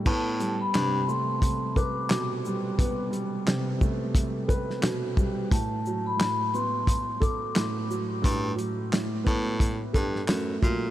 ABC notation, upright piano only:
X:1
M:4/4
L:1/8
Q:"Swing 16ths" 1/4=88
K:Ador
V:1 name="Upright piano" clef=bass
B, G, C, A,2 B B,, G, | B, G, C, A,2 B B,, G, | A,, F, A,, B,2 A A,, F, | A,, F, A,, B,2 A A, F, |]